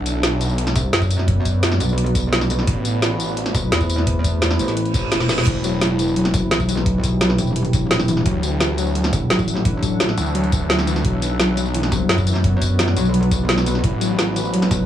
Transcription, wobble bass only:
0.76 C2
0.93 F#2
1.80 B1
3.55 B1
3.72 E2
4.59 A1
5.12 E1
6.34 F#1
6.51 B1
7.38 E1
9.13 E1
9.30 A1
11.92 C2
12.09 F#2
12.97 B1
14.71 B1

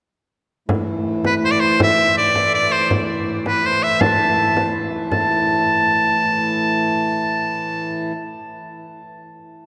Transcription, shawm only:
1.26 B4
1.45 C5
1.51 D5
1.60 C5
1.82 E5
2.17 D5
2.54 D5
2.72 C5
3.47 B4
3.66 C5
3.83 E5
4.01 A5
5.12 A5

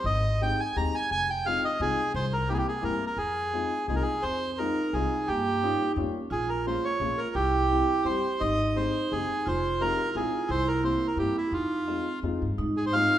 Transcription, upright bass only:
0.04 G#1
0.76 D#2
1.11 F1
1.80 C2
2.14 C2
2.83 G2
3.17 F2
3.88 C2
4.23 F2
4.93 C2
5.28 G2
5.96 F2
6.31 A#1
7.00 A#1
7.35 C2
8.05 G2
8.41 G#1
9.12 F#1
9.47 F1
10.15 A#1
10.49 C2
11.17 G2
11.51 F2
12.23 F2
12.42 G2
12.58 G#2

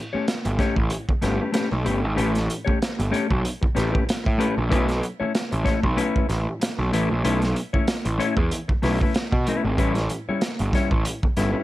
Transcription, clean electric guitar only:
0.13 A3 C#4 G4 C#5
0.45 muted clean electric guitar stroke
0.59 A3 C#4 G4 C#5
0.78 muted clean electric guitar stroke
0.91 muted clean electric guitar stroke
1.09 muted clean electric guitar stroke
1.21 A3 C#4 G4 B4
1.41 A3 C#4 G4 B4
1.52 A3 C#4 G4 B4
1.71 muted clean electric guitar stroke
1.84 A3 C#4 G4 B4
2.03 muted clean electric guitar stroke
2.16 A3 C#4 G4 B4
2.34 muted clean electric guitar stroke
2.47 muted clean electric guitar stroke
2.65 A3 C#4 G4 C#5
2.98 muted clean electric guitar stroke
3.11 A3 C#4 G4 C#5
3.29 muted clean electric guitar stroke
3.44 muted clean electric guitar stroke
3.61 muted clean electric guitar stroke
3.75 A3 C#4 G4 B4
3.92 A3 C#4 G4 B4
4.06 muted clean electric guitar stroke
4.24 muted clean electric guitar stroke
4.38 A3 C#4 G4 B4
4.57 muted clean electric guitar stroke
4.69 A3 C#4 E4 B4
4.89 muted clean electric guitar stroke
5.01 muted clean electric guitar stroke
5.20 A3 C#4 E4 C#5
5.51 muted clean electric guitar stroke
5.64 A3 C#4 E4 C#5
5.82 muted clean electric guitar stroke
5.96 A3 C#4 E4 B4
6.29 muted clean electric guitar stroke
6.46 muted clean electric guitar stroke
6.60 muted clean electric guitar stroke
6.79 muted clean electric guitar stroke
6.93 A3 C#4 E4 B4
7.11 muted clean electric guitar stroke
7.24 A3 C#4 E4 B4
7.41 muted clean electric guitar stroke
7.55 muted clean electric guitar stroke
7.73 A3 C#4 E4 C#5
8.05 muted clean electric guitar stroke
8.18 A3 C#4 E4 C#5
8.37 muted clean electric guitar stroke
8.52 muted clean electric guitar stroke
8.68 muted clean electric guitar stroke
8.82 A3 C#4 E4 B4
9.02 A3 C#4 E4 B4
9.16 muted clean electric guitar stroke
9.34 muted clean electric guitar stroke
9.48 A3 C#4 E4 B4
9.65 muted clean electric guitar stroke
9.78 G3 C#4 E4 B4
9.97 muted clean electric guitar stroke
10.11 muted clean electric guitar stroke
10.29 G3 C#4 E4 C#5
10.61 muted clean electric guitar stroke
10.74 G3 C#4 E4 C#5
10.92 muted clean electric guitar stroke
11.07 muted clean electric guitar stroke
11.24 muted clean electric guitar stroke
11.37 G3 C#4 E4 B4
11.52 G3 C#4 E4 B4

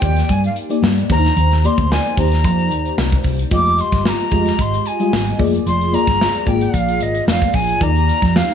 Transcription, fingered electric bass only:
0.02 D#2
0.29 G2
0.82 G2
1.10 D#2
1.37 D#2
1.78 D2
2.18 D#2
2.44 F2
2.71 D#2
2.98 C2
3.25 C2
3.52 F1
3.92 G1
4.32 F1
4.59 G#1
5.13 G#1
5.39 F1
5.66 F1
6.07 G1
6.47 G#1
6.74 A#1
7.00 G#1
7.27 F1
7.54 A#1
7.81 D#2
8.22 F2

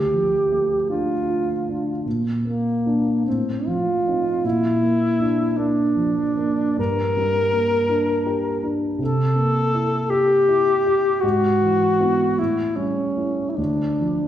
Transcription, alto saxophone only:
Already playing: G4
0.90 F4
2.42 A#3
3.26 C4
3.67 F4
4.46 E4
5.57 D4
6.79 A#4
8.99 A4
10.10 G4
11.21 F#4
12.39 E4
12.76 C#4
13.50 E4
13.56 D4

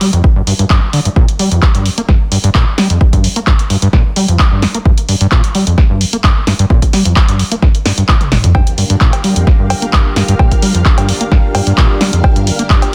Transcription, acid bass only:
0.01 G3
0.13 F2
0.36 G2
0.47 G2
0.59 G2
0.70 G2
0.93 D3
1.05 G2
1.16 A#2
1.39 G3
1.51 F2
1.75 G2
1.86 F2
1.98 A#3
2.09 G2
2.32 G2
2.44 G2
2.55 A#2
2.78 G3
2.90 F2
3.13 G2
3.24 F2
3.36 A#3
3.47 G2
3.70 G2
3.82 G2
3.93 A#2
4.16 G3
4.28 F2
4.52 G2
4.62 F2
4.75 A#3
4.85 G2
5.09 G2
5.21 G2
5.32 A#2
5.55 G3
5.67 F2
5.90 G2
6.01 F2
6.13 A#3
6.24 G2
6.47 G2
6.59 G2
6.70 A#2
6.93 G3
7.05 F2
7.28 G2
7.39 F2
7.51 A#3
7.62 G2
7.86 G2
7.98 G2
8.09 A#2
8.32 G1
8.44 F2
8.55 G2
8.78 G2
8.90 G2
9.01 A#2
9.24 G3
9.36 F2
9.59 G2
9.70 F2
9.82 A#3
9.93 G2
10.16 G2
10.28 G2
10.39 A#2
10.62 G3
10.75 F2
10.98 G2
11.09 F2
11.21 A#3
11.32 G2
11.55 G2
11.67 G2
11.78 A#2
12.01 G3
12.13 F2
12.36 G2
12.47 F2
12.59 A#3
12.70 G2

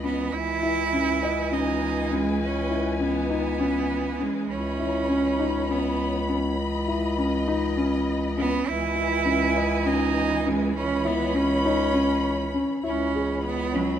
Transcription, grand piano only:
0.03 C#4
0.62 E4
0.93 C#4
1.23 D#5
1.51 C#4
2.11 C#4
2.70 E4
3.00 C#4
3.30 D#4
3.59 C#4
4.19 C#4
4.79 E4
5.09 C#4
5.39 D#4
5.69 C#4
6.28 C#4
6.88 E4
7.18 C#4
7.48 D#4
7.77 C#4
8.37 C#4
8.95 E4
9.25 C#4
9.56 D#5
9.85 C#4
10.46 C#4
11.05 E4
11.34 C#4
11.65 D#4
11.94 C#4
12.54 C#4
12.83 E4
13.14 G#4
13.74 C#4

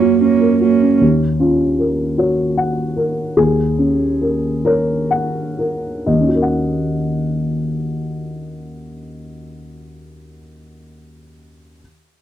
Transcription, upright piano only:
Already playing: F#2 C#4 A#4
0.00 F#4
0.21 C#4
0.41 A#4
0.61 F#4
0.82 C#4
1.01 D#2
1.39 C#4 F4
1.79 A#4
2.18 F#4 C#5
2.57 F#5
2.96 A#4
3.37 D#2 G#4
3.79 C#4
4.21 A#4
4.65 A#4 C#5
5.11 F#5
5.59 A#4
6.06 D#2 D#5
6.14 D#3
6.21 C#4
6.28 F#4
6.35 A#4
6.42 F#5

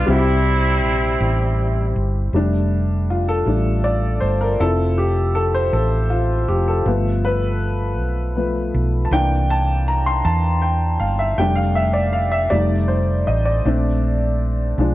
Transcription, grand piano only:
0.06 C3 G3 C4 E4
0.12 F#4
0.18 G4
2.34 G3 A3 D4
3.10 F4
3.29 A4
3.46 G3 A3 D4
3.84 D5
4.20 C5
4.41 A#4
4.60 F3 C4 E4 A4
4.98 G4
5.35 A4
5.54 C5
5.73 A4
6.10 F4
6.48 G4
6.68 A4
6.86 F3 A3 B3
7.25 B4
8.36 F3 A3 B3
9.05 A5
9.12 E3 A#3 D4 G5
9.50 A5
9.88 A#5
10.06 C6
10.25 A5
10.62 G5
10.99 F5
11.19 E5
11.38 G3 A3 D4 G5
11.55 F5
11.75 E5
11.93 D5
12.13 F5
12.32 E5
12.50 G3 A3 D#4 D5
12.88 C5
13.27 D#5
13.45 D5
13.65 A3 C4 D4
14.79 F3 G#3 D4

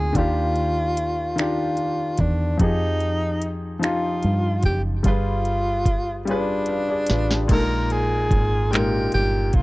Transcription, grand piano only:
Already playing: A#2 G#3 C4 D#4
0.13 D#3 D4
0.17 F4 G4
1.36 D#3 D4 F4
1.41 G4
2.57 F3 D#4 G4
2.63 G#4
3.79 F3 D#4 G4
3.85 F4
5.03 G3 F4 G#4
5.08 B4
6.25 G3 F4 G#4
6.31 B4
6.69 B4 F5
6.89 G#4 D5
7.09 F4 B4
7.30 D4 G4
7.48 A#2 G#3
7.52 D#4 A4
7.60 A#4
8.71 A#2 G#3 D#4
8.76 A#4

